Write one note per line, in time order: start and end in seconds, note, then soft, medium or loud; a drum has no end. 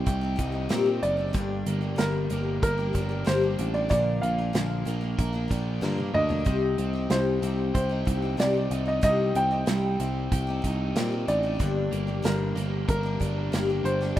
0.00 0.39 C3 medium
0.00 1.03 G3 medium
0.00 0.23 C4 soft
0.00 0.69 C4 medium
0.00 0.22 D#4 soft
0.00 0.20 G4 soft
0.00 1.08 G5 loud
0.06 0.35 C2 loud
0.06 1.35 G4 medium
0.06 kick loud
0.06 closed hi-hat medium
0.21 0.36 C4 soft
0.21 0.37 D#4 medium
0.21 0.38 G4 medium
0.36 0.67 C2 medium
0.36 0.53 G3 medium
0.36 0.54 C4 medium
0.36 0.52 D#4 medium
0.36 0.51 G4 medium
0.36 kick medium
0.36 closed hi-hat medium
0.52 0.68 C4 soft
0.52 0.69 D#4 medium
0.52 0.69 G4 medium
0.69 0.99 A#2 medium
0.69 0.86 C3 medium
0.69 0.86 G3 medium
0.69 0.86 C4 medium
0.69 0.86 D#4 medium
0.69 0.84 G4 medium
0.69 snare loud
0.69 closed hi-hat medium
0.86 1.19 C4 soft
0.86 1.17 D#4 medium
0.86 1.16 G4 medium
1.03 1.31 F#1 medium
1.03 1.35 D#4 medium
1.03 2.02 D5 loud
1.03 closed hi-hat medium
1.17 1.34 C4 soft
1.17 1.34 D#4 medium
1.17 1.34 G4 medium
1.33 1.63 G1 medium
1.33 1.82 G2 medium
1.33 1.82 D3 medium
1.33 1.82 G3 medium
1.33 1.82 A#3 medium
1.33 1.81 D4 medium
1.33 1.79 G4 medium
1.33 kick loud
1.33 closed hi-hat medium
1.66 1.95 G1 medium
1.66 2.30 A#3 medium
1.66 closed hi-hat medium
1.81 1.97 G3 soft
1.81 1.97 A#3 soft
1.81 1.97 D4 medium
1.81 1.97 G4 soft
1.96 2.27 G1 medium
1.96 2.29 G2 medium
1.96 2.30 D3 medium
1.96 2.28 G3 medium
1.96 2.29 A#3 medium
1.96 2.30 D4 medium
1.96 2.31 G4 medium
1.96 2.61 A#4 medium
1.96 snare loud
1.96 closed hi-hat medium
2.30 2.59 G1 medium
2.30 2.78 G3 medium
2.30 2.79 A#3 medium
2.30 2.78 D4 medium
2.30 2.76 G4 medium
2.30 closed hi-hat medium
2.62 2.91 G1 loud
2.62 3.90 A#4 medium
2.62 3.29 A#4 medium
2.62 kick loud
2.62 closed hi-hat medium
2.78 2.92 G3 soft
2.78 2.93 A#3 medium
2.78 2.94 D4 medium
2.78 2.94 G4 medium
2.93 3.23 G1 medium
2.93 3.10 G3 medium
2.93 3.10 A#3 medium
2.93 3.09 D4 medium
2.93 3.08 G4 medium
2.93 kick medium
2.93 closed hi-hat medium
3.09 3.25 G3 soft
3.09 3.25 A#3 soft
3.09 3.25 D4 soft
3.09 3.26 G4 medium
3.25 3.55 G1 medium
3.25 3.42 G2 medium
3.25 3.42 D3 medium
3.25 3.42 G3 medium
3.25 3.42 A#3 medium
3.25 3.42 D4 medium
3.25 3.40 G4 medium
3.25 3.76 C5 medium
3.25 snare loud
3.25 closed hi-hat medium
3.41 3.76 G3 soft
3.41 3.75 A#3 soft
3.41 3.73 D4 soft
3.41 3.73 G4 medium
3.58 3.87 A1 medium
3.58 3.91 D4 medium
3.58 closed hi-hat medium
3.74 3.89 G3 soft
3.74 3.89 A#3 soft
3.74 3.89 D4 soft
3.74 3.90 G4 medium
3.74 3.79 D5 medium
3.89 4.19 A#1 medium
3.89 4.38 A#2 medium
3.89 4.38 D3 medium
3.89 4.38 F3 medium
3.89 4.38 A#3 medium
3.89 4.38 D4 medium
3.89 4.37 A#4 medium
3.89 4.23 D5 loud
3.89 kick loud
3.89 closed hi-hat medium
4.22 4.51 A#1 medium
4.22 4.86 A#3 medium
4.22 6.20 F5 medium
4.22 closed hi-hat medium
4.38 4.53 F3 soft
4.38 4.54 A#3 soft
4.38 4.54 D4 medium
4.38 4.54 A#4 medium
4.53 4.83 A#1 medium
4.53 4.86 A#2 medium
4.53 4.86 D3 medium
4.53 4.84 F3 medium
4.53 4.85 A#3 medium
4.53 4.86 D4 medium
4.53 4.87 A#4 medium
4.53 snare loud
4.53 closed hi-hat medium
4.85 5.15 A#1 medium
4.85 5.02 F3 medium
4.85 5.02 A#3 medium
4.85 5.01 D4 medium
4.85 5.00 A#4 medium
4.85 closed hi-hat medium
5.01 5.34 F3 soft
5.01 5.34 A#3 soft
5.01 5.33 D4 soft
5.01 5.32 A#4 soft
5.19 5.47 A#1 medium
5.19 6.47 A#4 medium
5.19 kick loud
5.19 closed hi-hat medium
5.33 5.47 F3 medium
5.33 5.48 A#3 medium
5.33 5.49 D4 medium
5.33 5.50 A#4 medium
5.48 5.79 A#1 medium
5.48 5.81 F3 medium
5.48 5.82 A#3 medium
5.48 5.82 D4 medium
5.48 5.82 A#4 medium
5.48 kick medium
5.48 closed hi-hat medium
5.81 6.11 G2 medium
5.81 5.98 A#2 medium
5.81 5.98 D3 medium
5.81 5.98 F3 medium
5.81 5.98 A#3 medium
5.81 5.97 D4 medium
5.81 5.96 A#4 medium
5.81 snare medium
5.97 6.30 F3 soft
5.97 6.29 A#3 soft
5.97 6.29 D4 soft
5.97 6.27 A#4 soft
5.97 high tom medium
6.14 6.42 D2 medium
6.14 6.47 D4 medium
6.14 7.13 D#5 loud
6.14 mid tom medium
6.29 6.45 F3 soft
6.29 6.45 A#3 soft
6.29 6.46 D4 medium
6.29 6.46 A#4 medium
6.29 floor tom medium
6.45 6.75 C2 medium
6.45 6.94 C3 medium
6.45 6.94 G3 medium
6.45 6.94 C4 medium
6.45 6.94 D#4 medium
6.45 6.92 G4 medium
6.45 kick loud
6.45 closed hi-hat medium
6.78 7.06 C2 medium
6.78 7.41 C4 medium
6.78 closed hi-hat medium
6.93 7.10 C4 soft
6.93 7.10 D#4 soft
6.93 7.10 G4 medium
7.10 7.38 C2 medium
7.10 7.42 C3 medium
7.10 7.41 G3 medium
7.10 7.42 C4 medium
7.10 7.43 D#4 medium
7.10 7.43 G4 medium
7.10 7.73 C5 medium
7.10 snare loud
7.10 closed hi-hat medium
7.42 7.71 C2 medium
7.42 7.90 G3 medium
7.42 7.91 C4 medium
7.42 7.90 D#4 medium
7.42 7.88 G4 medium
7.42 closed hi-hat medium
7.74 8.03 C2 medium
7.74 10.32 G4 medium
7.74 8.41 C5 medium
7.74 kick loud
7.74 closed hi-hat medium
7.89 8.06 C4 soft
7.89 8.07 D#4 medium
7.89 8.06 G4 medium
8.05 8.35 C2 medium
8.05 8.22 G3 medium
8.05 8.23 C4 medium
8.05 8.23 D#4 medium
8.05 8.21 G4 medium
8.05 kick medium
8.05 closed hi-hat medium
8.22 8.37 C4 soft
8.22 8.38 D#4 soft
8.22 8.38 G4 medium
8.37 8.67 C2 medium
8.37 8.54 C3 medium
8.37 8.54 G3 medium
8.37 8.55 C4 medium
8.37 8.55 D#4 medium
8.37 8.53 G4 medium
8.37 8.89 D5 medium
8.37 snare loud
8.37 closed hi-hat medium
8.54 8.88 C4 soft
8.54 8.86 D#4 soft
8.54 8.84 G4 medium
8.71 8.99 C2 medium
8.71 10.31 D#4 medium
8.71 closed hi-hat medium
8.86 9.02 C4 soft
8.86 9.02 D#4 soft
8.86 9.02 G4 medium
8.86 9.02 D#5 medium
9.01 9.31 C2 medium
9.01 9.50 C3 medium
9.01 9.51 G3 medium
9.01 9.51 C4 medium
9.01 9.51 D#4 medium
9.01 9.50 G4 medium
9.01 9.33 D#5 loud
9.01 kick loud
9.01 closed hi-hat medium
9.35 9.63 C2 medium
9.35 9.99 C4 medium
9.35 11.34 G5 loud
9.35 closed hi-hat medium
9.51 9.66 C4 soft
9.51 9.67 D#4 soft
9.51 9.67 G4 medium
9.66 9.96 C2 medium
9.66 9.99 C3 medium
9.66 9.98 G3 medium
9.66 9.99 C4 medium
9.66 10.00 D#4 medium
9.66 10.00 G4 medium
9.66 snare loud
9.66 closed hi-hat medium
10.00 10.28 C2 medium
10.00 10.47 G3 medium
10.00 10.48 C4 medium
10.00 10.48 D#4 medium
10.00 10.46 G4 medium
10.00 closed hi-hat medium
10.32 10.60 C2 medium
10.32 11.60 G4 medium
10.32 kick loud
10.32 closed hi-hat medium
10.47 10.63 C4 medium
10.47 10.63 D#4 medium
10.47 10.63 G4 medium
10.62 10.92 C2 medium
10.62 10.95 G3 medium
10.62 10.95 C4 medium
10.62 10.96 D#4 medium
10.62 10.96 G4 medium
10.62 kick medium
10.62 closed hi-hat medium
10.96 11.24 A#2 medium
10.96 11.11 C3 medium
10.96 11.12 G3 medium
10.96 11.12 C4 medium
10.96 11.11 D#4 loud
10.96 11.09 G4 medium
10.96 snare loud
10.96 closed hi-hat medium
11.10 11.45 C4 soft
11.10 11.43 D#4 soft
11.10 11.42 G4 medium
11.28 11.56 A1 medium
11.28 11.60 D#4 medium
11.28 12.27 D5 medium
11.28 closed hi-hat medium
11.43 11.60 C4 soft
11.43 11.60 D#4 medium
11.43 11.59 G4 medium
11.59 11.88 G1 medium
11.59 12.08 G2 medium
11.59 12.08 D3 medium
11.59 12.08 G3 medium
11.59 12.08 A#3 medium
11.59 12.07 D4 medium
11.59 12.06 G4 medium
11.59 kick loud
11.59 closed hi-hat medium
11.92 12.20 G1 medium
11.92 12.55 A#3 medium
11.92 closed hi-hat medium
12.07 12.22 G3 soft
12.07 12.23 A#3 soft
12.07 12.23 D4 soft
12.07 12.23 G4 medium
12.22 12.52 G1 medium
12.22 12.55 G2 medium
12.22 12.56 D3 medium
12.22 12.54 G3 medium
12.22 12.56 A#3 medium
12.22 12.56 D4 medium
12.22 12.56 G4 medium
12.22 12.85 A#4 medium
12.22 snare loud
12.22 closed hi-hat medium
12.56 12.84 G1 medium
12.56 13.04 G3 medium
12.56 13.04 A#3 medium
12.56 13.04 D4 medium
12.56 13.02 G4 medium
12.56 closed hi-hat medium
12.89 13.17 G1 medium
12.89 14.17 A#4 medium
12.89 13.88 A#4 medium
12.89 kick loud
12.89 closed hi-hat medium
13.03 13.18 G3 soft
13.03 13.19 A#3 soft
13.03 13.20 D4 medium
13.03 13.20 G4 medium
13.20 13.49 G1 medium
13.20 13.52 G3 medium
13.20 13.52 A#3 medium
13.20 13.53 D4 medium
13.20 13.53 G4 medium
13.20 kick medium
13.20 closed hi-hat medium
13.52 13.81 G1 medium
13.52 13.68 G2 medium
13.52 13.69 D3 medium
13.52 13.69 G3 medium
13.52 13.69 A#3 medium
13.52 13.69 D4 medium
13.52 13.67 G4 medium
13.52 snare medium
13.52 closed hi-hat medium
13.68 14.02 G3 soft
13.68 14.01 A#3 soft
13.68 14.00 D4 soft
13.68 14.00 G4 soft
13.84 14.12 G1 medium
13.84 14.16 D4 medium
13.84 14.18 C5 medium
13.84 closed hi-hat medium
14.01 14.18 G3 soft
14.01 14.18 A#3 soft
14.01 14.17 D4 medium
14.01 14.17 G4 medium
14.01 snare soft
14.16 14.20 A#2 medium
14.16 14.20 D5 medium